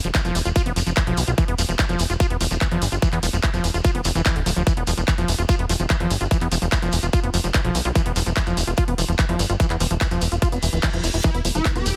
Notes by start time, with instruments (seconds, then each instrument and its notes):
0.04 analog synth bass E1, acid bass F3, closed hi-hat, shekere
0.15 acid bass E3, kick, clap, closed hi-hat, shekere
0.25 analog synth bass E1, acid bass F3, closed hi-hat, shekere
0.35 analog synth bass E1, acid bass E3, open hi-hat, shekere
0.45 analog synth bass E1, acid bass F4, closed hi-hat, shekere
0.56 acid bass F4, kick, closed hi-hat, shekere
0.66 analog synth bass F1, acid bass B3, closed hi-hat
0.76 analog synth bass F1, acid bass F3, open hi-hat, shekere
0.87 analog synth bass F1, acid bass F3, closed hi-hat, shekere
0.96 acid bass E3, kick, clap, closed hi-hat, shekere
1.07 analog synth bass B1, acid bass F3, closed hi-hat
1.17 analog synth bass B1, acid bass E3, open hi-hat, shekere
1.27 analog synth bass B1, acid bass F4, closed hi-hat, shekere
1.38 acid bass E3, kick, closed hi-hat, shekere
1.48 analog synth bass E1, acid bass B3, closed hi-hat
1.58 analog synth bass E1, acid bass F3, open hi-hat, shekere
1.69 analog synth bass E1, acid bass F3, closed hi-hat, shekere
1.79 acid bass E3, kick, clap, closed hi-hat, shekere
1.89 analog synth bass E1, acid bass F3, closed hi-hat, shekere
1.99 analog synth bass E1, acid bass E3, open hi-hat, shekere
2.10 analog synth bass E1, acid bass F4, closed hi-hat, shekere
2.20 acid bass F4, kick, closed hi-hat, shekere
2.30 analog synth bass E1, acid bass B3, closed hi-hat
2.41 analog synth bass E1, acid bass F3, open hi-hat, shekere
2.51 analog synth bass E1, acid bass F3, closed hi-hat, shekere
2.61 acid bass E3, kick, clap, closed hi-hat, shekere
2.71 analog synth bass E2, acid bass F3, closed hi-hat
2.82 analog synth bass G1, acid bass E3, open hi-hat, shekere
2.92 analog synth bass G1, acid bass F4, closed hi-hat, shekere
3.02 acid bass E3, kick, closed hi-hat, shekere
3.13 analog synth bass E2, acid bass B3, clap, closed hi-hat
3.23 analog synth bass E1, acid bass F3, open hi-hat, shekere
3.33 analog synth bass E1, acid bass F3, closed hi-hat, shekere
3.43 acid bass E3, kick, clap, closed hi-hat, shekere
3.54 analog synth bass E1, acid bass F3, closed hi-hat, shekere
3.64 analog synth bass E1, acid bass E3, open hi-hat, shekere
3.74 analog synth bass E1, acid bass F4, closed hi-hat, shekere
3.84 acid bass F4, kick, closed hi-hat, shekere
3.95 analog synth bass F1, acid bass B3, closed hi-hat
4.04 analog synth bass F1, acid bass E3, open hi-hat, shekere
4.15 analog synth bass F1, acid bass E3, closed hi-hat, shekere
4.26 acid bass E3, kick, clap, closed hi-hat, shekere
4.36 analog synth bass D1, acid bass D3, closed hi-hat
4.46 analog synth bass D1, acid bass F3, open hi-hat, shekere
4.56 analog synth bass D1, acid bass F3, closed hi-hat, shekere
4.67 acid bass E3, kick, closed hi-hat, shekere
4.77 analog synth bass E1, acid bass B3, closed hi-hat
4.87 analog synth bass E1, acid bass F3, open hi-hat, shekere
4.97 analog synth bass E1, acid bass F3, closed hi-hat, shekere
5.08 acid bass E3, kick, clap, closed hi-hat, shekere
5.18 analog synth bass E1, acid bass F3, closed hi-hat, shekere
5.28 analog synth bass E1, acid bass E3, open hi-hat, shekere
5.39 analog synth bass E1, acid bass F4, closed hi-hat, shekere
5.49 acid bass F4, kick, closed hi-hat, shekere
5.59 analog synth bass E1, acid bass B3, closed hi-hat
5.69 analog synth bass E1, acid bass F3, open hi-hat, shekere
5.79 analog synth bass E1, acid bass F3, closed hi-hat, shekere
5.90 acid bass E3, kick, clap, closed hi-hat, shekere
6.00 analog synth bass E2, acid bass F3, closed hi-hat
6.10 analog synth bass G1, acid bass E3, open hi-hat, shekere
6.21 analog synth bass G1, acid bass F4, closed hi-hat, shekere
6.31 acid bass E3, kick, closed hi-hat, shekere
6.41 analog synth bass E2, acid bass B3, clap, closed hi-hat
6.52 analog synth bass E1, acid bass F3, open hi-hat, shekere
6.62 analog synth bass E1, acid bass F3, closed hi-hat, shekere
6.72 acid bass E3, kick, clap, closed hi-hat, shekere
6.82 analog synth bass E1, acid bass F3, closed hi-hat, shekere
6.92 analog synth bass E1, acid bass E3, open hi-hat, shekere
7.02 analog synth bass E1, acid bass F4, closed hi-hat, shekere
7.13 acid bass F4, kick, closed hi-hat, shekere
7.23 analog synth bass F1, acid bass B3, closed hi-hat
7.34 analog synth bass F1, acid bass F3, open hi-hat, shekere
7.44 analog synth bass F1, acid bass F3, closed hi-hat, shekere
7.54 acid bass E3, kick, clap, closed hi-hat, shekere
7.65 analog synth bass B1, acid bass F3, closed hi-hat
7.75 analog synth bass B1, acid bass E3, open hi-hat, shekere
7.85 analog synth bass B1, acid bass F4, zap, shekere
7.95 acid bass E3, kick, closed hi-hat, shekere
8.06 analog synth bass E1, acid bass B3, closed hi-hat
8.16 analog synth bass E1, acid bass F3, open hi-hat, shekere
8.26 analog synth bass E1, acid bass F3, closed hi-hat, shekere
8.37 acid bass E3, kick, clap, closed hi-hat, shekere
8.46 analog synth bass E1, acid bass F3, closed hi-hat, shekere
8.57 analog synth bass E1, acid bass E3, open hi-hat, shekere
8.67 analog synth bass E1, acid bass F4, closed hi-hat, shekere
8.77 acid bass F4, kick, closed hi-hat, shekere
8.88 analog synth bass E1, acid bass B3, closed hi-hat
8.98 analog synth bass E1, acid bass F3, open hi-hat, shekere
9.08 analog synth bass E1, acid bass F3, closed hi-hat, shekere
9.18 acid bass E3, kick, clap, closed hi-hat, shekere
9.29 analog synth bass E2, acid bass F3, closed hi-hat
9.39 analog synth bass G1, acid bass E3, open hi-hat, shekere
9.49 analog synth bass G1, acid bass F4, closed hi-hat, shekere
9.60 acid bass E3, kick, closed hi-hat, shekere
9.70 analog synth bass E2, acid bass B3, clap, closed hi-hat, shekere
9.80 analog synth bass E1, acid bass F3, open hi-hat, shekere
9.90 analog synth bass E1, acid bass F3, closed hi-hat, shekere
10.01 acid bass E3, kick, clap, closed hi-hat, shekere
10.11 analog synth bass E1, acid bass F3, closed hi-hat, shekere
10.21 analog synth bass E1, acid bass E3, open hi-hat, shekere
10.32 analog synth bass E1, acid bass F4, closed hi-hat, shekere
10.42 acid bass F4, kick, closed hi-hat, reverse cymbal, shekere
10.52 analog synth bass F1, acid bass B3, closed hi-hat, shekere
10.63 analog synth bass E1, acid bass E3, open hi-hat, shekere
10.73 analog synth bass D1, acid bass E3, closed hi-hat, shekere
10.83 acid bass E3, kick, clap, closed hi-hat, shekere
10.93 analog synth bass E1, acid bass F3, closed hi-hat, shekere
11.03 analog synth bass E1, acid bass E4, open hi-hat, shekere
11.13 analog synth bass E1, acid bass E4, closed hi-hat, shekere
11.24 acid bass E3, synth drone A3 A4, digital synth lead E4, kick, closed hi-hat, shekere
11.34 analog synth bass E1, acid bass B3, closed hi-hat
11.45 analog synth bass E1, acid bass F3, open hi-hat, shekere
11.55 analog synth bass E1, acid bass F3, digital synth lead E4, closed hi-hat, shekere
11.65 acid bass E3, kick, clap, closed hi-hat, shekere
11.76 analog synth bass E1, acid bass B3, digital synth lead G4, closed hi-hat, shekere
11.86 analog synth bass E1, acid bass E3, open hi-hat, shekere